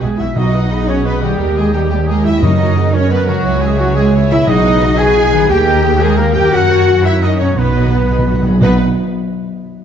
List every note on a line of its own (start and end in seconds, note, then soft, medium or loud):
0.00 0.08 B1 soft
0.00 0.18 B2 medium
0.00 0.09 B2 medium
0.00 0.09 G#3 medium
0.00 0.20 G#3 medium
0.00 0.22 B3 soft
0.00 0.27 D#4 soft
0.00 0.32 F#4 soft
0.00 0.09 F#4 medium
0.00 0.08 G#4 medium
0.00 0.19 G#4 medium
0.00 0.22 G#4 medium
0.00 0.15 B4 medium
0.00 0.20 B4 medium
0.00 0.08 E5 medium
0.17 0.26 B1 medium
0.17 1.32 B2 medium
0.17 0.27 B2 soft
0.17 0.25 E4 medium
0.17 0.27 E4 medium
0.17 0.27 F#4 medium
0.17 0.35 E5 medium
0.17 0.27 E5 medium
0.17 0.36 E5 medium
0.17 0.37 E5 medium
0.17 0.26 F#5 medium
0.23 1.34 B3 medium
0.28 1.29 D#4 medium
0.33 1.35 B1 medium
0.33 0.84 B2 loud
0.33 0.87 D#4 medium
0.33 1.39 F#4 medium
0.33 0.86 D#5 medium
0.33 0.88 D#5 medium
0.33 0.87 D#5 medium
0.33 0.52 F#5 medium
0.33 0.52 B5 medium
0.37 0.53 D#4 medium
0.37 0.87 D#4 medium
0.37 0.56 F#4 medium
0.37 0.53 D#5 medium
0.37 0.87 D#5 medium
0.54 0.71 F#4 medium
0.54 0.71 B4 medium
0.54 0.71 D#5 medium
0.54 0.71 F#5 medium
0.54 0.71 D#6 medium
0.70 0.88 D#4 medium
0.70 1.40 G#4 medium
0.70 0.88 D#5 medium
0.70 0.88 F#5 medium
0.70 0.88 B5 medium
0.87 1.04 C#4 loud
0.87 1.05 C#4 medium
0.87 1.06 F#4 medium
0.87 1.05 C#5 medium
0.87 1.08 C#5 medium
0.87 1.05 C#5 medium
0.87 1.06 D#5 medium
0.87 1.05 F#5 medium
0.87 1.06 D#6 medium
1.05 1.13 B3 medium
1.05 1.23 B3 medium
1.05 1.22 D#4 medium
1.05 1.22 B4 medium
1.05 1.13 B4 medium
1.05 1.22 B4 medium
1.05 1.22 D#5 medium
1.05 1.22 F#5 medium
1.05 1.22 B5 medium
1.22 2.35 D#3 medium
1.22 1.56 G3 loud
1.22 1.56 G3 medium
1.22 1.40 F#4 medium
1.22 1.56 G4 medium
1.22 1.40 D#5 medium
1.22 1.40 F#5 medium
1.22 1.40 D#6 medium
1.26 2.28 A#3 medium
1.31 2.40 D#4 medium
1.39 2.43 D#2 medium
1.39 1.56 D#4 medium
1.39 2.42 G4 medium
1.39 1.55 A#4 medium
1.39 1.55 G5 medium
1.39 1.56 A#5 medium
1.55 1.73 G#3 medium
1.55 1.74 G#3 medium
1.55 1.74 G4 medium
1.55 1.73 G#4 medium
1.55 1.74 G#4 medium
1.55 1.74 D#5 medium
1.55 1.73 G5 medium
1.73 1.89 G3 medium
1.73 1.81 G3 medium
1.73 1.91 D#4 medium
1.73 1.80 G4 medium
1.73 1.89 G4 medium
1.73 1.90 G4 medium
1.73 1.82 G4 medium
1.73 1.91 A#4 medium
1.73 1.90 G5 medium
1.73 1.91 A#5 medium
1.90 2.08 G3 loud
1.90 1.99 G3 medium
1.90 1.96 G4 medium
1.90 2.08 G4 medium
1.90 1.98 G4 medium
1.90 2.08 G4 medium
1.90 2.09 G4 medium
1.90 2.08 D#5 medium
1.90 2.08 G5 medium
2.07 2.25 G#3 medium
2.07 2.26 G#3 medium
2.07 2.24 D#4 medium
2.07 2.25 G#4 medium
2.07 2.25 A#4 medium
2.07 2.24 G5 medium
2.07 2.24 A#5 medium
2.24 3.38 F#2 medium
2.24 2.42 E4 loud
2.24 2.43 E4 medium
2.24 2.43 G4 medium
2.24 2.42 D#5 medium
2.24 2.31 E5 medium
2.24 2.42 E5 medium
2.24 2.42 G5 medium
2.29 3.40 A#3 medium
2.34 3.35 C#4 medium
2.38 2.58 C#4 medium
2.38 3.45 F#4 medium
2.38 2.58 A#4 medium
2.38 2.92 D#5 medium
2.38 2.94 D#5 medium
2.38 2.93 D#5 medium
2.38 2.58 F#5 medium
2.42 2.91 F#2 loud
2.42 3.45 F#2 medium
2.42 2.94 D#4 medium
2.42 2.94 D#4 loud
2.42 2.50 F#4 medium
2.42 2.93 D#5 medium
2.59 2.77 F#4 medium
2.59 2.76 A#4 medium
2.59 2.77 C#5 medium
2.59 2.77 A#5 medium
2.76 2.94 C#4 medium
2.76 2.93 G#4 medium
2.76 2.94 A#4 medium
2.76 2.94 F#5 medium
2.93 3.11 C#4 loud
2.93 3.11 F#4 medium
2.93 3.44 A#4 medium
2.93 3.11 C#5 loud
2.93 3.11 C#5 medium
2.93 3.11 C#5 loud
2.93 3.11 C#5 medium
2.93 3.11 A#5 medium
3.09 3.28 B3 loud
3.09 3.28 B3 medium
3.09 3.27 C#4 medium
3.09 3.26 A#4 medium
3.09 3.27 A#4 medium
3.09 3.27 B4 medium
3.09 3.28 B4 medium
3.09 3.28 B4 loud
3.09 3.30 B4 medium
3.09 3.27 F#5 medium
3.26 4.41 C#3 medium
3.26 3.62 F#3 loud
3.26 3.62 F#3 medium
3.26 3.61 F#4 loud
3.26 3.45 F#4 medium
3.26 3.62 F#4 medium
3.26 3.63 F#4 loud
3.26 3.63 F#4 medium
3.26 3.43 C#5 medium
3.26 3.46 C#5 medium
3.26 3.45 A#5 medium
3.32 4.43 G#3 medium
3.37 4.45 C#4 medium
3.41 4.47 E4 medium
3.41 3.61 E4 medium
3.41 3.61 C#5 medium
3.41 4.46 C#5 loud
3.45 4.46 C#2 medium
3.45 3.61 E5 medium
3.45 3.61 G#5 medium
3.61 3.79 G#3 loud
3.61 3.80 G#3 medium
3.61 3.80 G#4 medium
3.61 3.79 G#4 medium
3.61 3.80 G#4 medium
3.61 3.70 G#4 medium
3.61 3.78 E5 medium
3.61 3.80 E5 medium
3.61 3.79 G#5 medium
3.78 3.96 F#3 loud
3.78 3.97 F#3 medium
3.78 3.97 E4 medium
3.78 3.96 F#4 medium
3.78 3.97 F#4 loud
3.78 3.87 F#4 loud
3.78 3.97 C#5 medium
3.78 3.95 E5 medium
3.78 3.96 G#5 medium
3.95 4.13 G#3 loud
3.95 4.14 G#3 loud
3.95 4.13 G#4 medium
3.95 4.14 G#4 medium
3.95 4.13 G#4 medium
3.95 4.14 G#4 medium
3.95 4.13 E5 medium
3.95 4.14 E5 medium
3.95 4.14 G#5 medium
4.14 4.30 E4 medium
4.14 4.30 C#5 medium
4.14 4.30 E5 medium
4.14 4.30 G#5 medium
4.29 5.42 B2 medium
4.29 4.38 E4 loud
4.29 4.47 E4 loud
4.29 4.49 G#4 medium
4.29 4.46 E5 loud
4.29 4.36 E5 loud
4.29 4.47 E5 loud
4.29 4.46 E5 loud
4.29 4.48 E5 medium
4.29 4.49 E5 medium
4.29 4.48 G#5 medium
4.34 5.45 B3 medium
4.39 5.40 D#4 medium
4.43 4.95 B2 loud
4.43 5.49 F#4 medium
4.43 4.99 D#5 loud
4.47 5.48 B1 loud
4.47 4.99 D#4 loud
4.47 4.98 D#4 loud
4.47 4.64 F#4 medium
4.47 5.01 G#4 loud
4.47 4.99 D#5 loud
4.47 4.98 D#5 loud
4.47 4.64 D#5 medium
4.47 4.64 F#5 medium
4.65 4.82 B4 medium
4.65 4.82 D#5 medium
4.65 4.82 F#5 medium
4.65 4.82 B5 medium
4.82 4.99 F#4 medium
4.82 4.99 D#5 medium
4.82 4.99 F#5 medium
4.97 5.18 F#4 loud
4.97 5.49 G#4 loud
4.97 5.50 G#4 loud
4.97 5.16 B4 medium
4.97 5.16 D#5 medium
4.97 5.16 F#5 medium
4.97 5.48 G#5 loud
4.97 5.50 G#5 loud
4.97 5.27 G#5 loud
4.97 5.50 G#5 loud
4.97 5.16 B5 medium
5.16 5.34 E4 loud
5.16 5.32 F#4 medium
5.16 5.32 D#5 medium
5.16 5.32 F#5 medium
5.32 6.45 D#3 medium
5.32 5.51 D#4 medium
5.32 5.50 B4 medium
5.32 5.50 D#5 medium
5.32 5.50 F#5 medium
5.32 5.50 B5 medium
5.37 6.38 A#3 medium
5.41 6.50 D#4 medium
5.46 6.53 D#2 loud
5.46 6.52 G4 medium
5.46 5.66 G4 loud
5.46 6.01 G5 loud
5.46 5.66 G5 medium
5.46 6.00 G5 loud
5.50 6.01 G4 loud
5.50 6.00 G4 loud
5.50 5.66 G4 medium
5.50 5.66 A#4 medium
5.50 6.01 G5 loud
5.66 5.83 G4 medium
5.66 5.85 A#4 loud
5.66 5.83 A#4 medium
5.66 5.84 D#5 medium
5.66 5.84 A#5 medium
5.84 6.01 G4 medium
5.84 6.03 G#4 loud
5.84 6.01 A#4 medium
5.84 6.01 G5 medium
5.99 6.17 G#3 loud
5.99 6.19 G#3 loud
5.99 6.17 G4 medium
5.99 6.19 G#4 loud
5.99 6.18 G#4 loud
5.99 6.09 G#4 loud
5.99 7.29 A#4 loud
5.99 6.17 A#4 medium
5.99 6.19 D#5 medium
5.99 6.19 A#5 medium
6.17 6.35 A#3 loud
6.17 6.36 A#3 medium
6.17 6.34 G4 medium
6.17 6.35 A#4 loud
6.17 6.34 A#4 loud
6.17 6.35 A#4 medium
6.17 6.34 A#4 medium
6.17 6.27 A#4 medium
6.17 6.35 G5 medium
6.34 7.50 F#2 medium
6.34 6.52 G4 loud
6.34 6.53 G4 medium
6.34 6.53 G4 loud
6.34 6.51 A#4 medium
6.34 6.53 D#5 medium
6.34 6.41 G5 loud
6.34 6.43 G5 loud
6.34 6.53 G5 loud
6.34 6.53 A#5 medium
6.39 7.52 A#3 medium
6.44 7.54 C#4 medium
6.48 7.52 F#4 medium
6.48 7.03 F#4 loud
6.48 7.03 F#5 loud
6.52 7.55 F#2 medium
6.52 6.69 C#4 medium
6.52 7.05 F#4 loud
6.52 6.69 A#4 loud
6.52 6.69 A#4 medium
6.52 6.69 F#5 medium
6.52 7.05 F#5 loud
6.70 6.88 F#4 medium
6.70 6.87 C#5 medium
6.70 6.88 C#5 medium
6.70 6.88 A#5 medium
6.87 7.05 C#4 medium
6.87 7.05 A#4 medium
6.87 7.04 F#5 medium
7.04 7.23 E4 loud
7.04 7.13 E4 loud
7.04 7.23 F#4 medium
7.04 7.22 C#5 medium
7.04 7.23 C#5 medium
7.04 7.24 E5 loud
7.04 7.11 E5 loud
7.04 7.22 E5 loud
7.04 7.22 A#5 medium
7.21 7.39 C#4 medium
7.21 7.40 D#4 medium
7.21 7.40 D#4 loud
7.21 7.38 A#4 medium
7.21 7.39 D#5 loud
7.21 7.28 D#5 medium
7.21 7.39 D#5 loud
7.21 7.40 D#5 loud
7.21 7.38 F#5 medium
7.38 8.55 B2 medium
7.38 7.57 C#4 medium
7.38 7.48 C#4 loud
7.38 7.58 F#4 medium
7.38 7.56 C#5 medium
7.38 7.57 C#5 loud
7.38 7.57 C#5 medium
7.38 7.58 C#5 medium
7.38 7.57 A#5 medium
7.44 8.60 B3 medium
7.53 8.45 B1 medium
7.53 8.62 F#4 medium
7.53 8.43 B4 medium
7.53 7.74 F#5 medium
7.57 7.64 B2 soft
7.57 8.43 B3 medium
7.57 8.44 B3 loud
7.57 8.33 D#4 medium
7.57 7.74 D#4 medium
7.57 8.43 B4 medium
7.57 8.45 B4 medium
7.57 7.74 B4 medium
7.57 8.44 B4 medium
7.65 7.71 B2 soft
7.72 7.79 B2 soft
7.72 7.93 F#4 medium
7.72 7.92 D#5 medium
7.72 7.93 D#5 medium
7.72 7.93 B5 medium
7.80 7.87 B2 medium
7.88 7.94 B2 medium
7.92 8.02 B2 medium
7.92 8.10 D#4 medium
7.92 8.11 B4 medium
7.92 8.10 F#5 medium
8.03 8.10 B2 medium
8.10 8.18 B2 medium
8.10 8.18 G#4 loud
8.10 8.27 D#5 medium
8.10 8.27 B5 medium
8.19 8.25 B2 medium
8.27 8.32 B2 medium
8.27 8.45 F#4 medium
8.27 8.44 F#5 medium
8.34 8.41 B2 medium
8.42 8.48 B2 loud
8.42 8.62 G#4 medium
8.46 8.56 B2 loud
8.46 8.63 D#5 medium
8.46 8.63 B5 medium
8.58 8.82 B2 medium
8.58 8.78 B2 loud
8.58 8.82 B3 medium
8.58 8.81 D#4 medium
8.58 8.81 B4 loud
8.62 8.82 B1 loud
8.62 8.77 B3 loud
8.62 8.82 B3 loud
8.62 8.82 D#4 medium
8.62 8.82 F#4 medium
8.62 8.77 B4 loud
8.62 8.82 B4 loud
8.62 8.78 B4 loud
8.62 8.82 F#5 medium
8.68 8.82 D#5 medium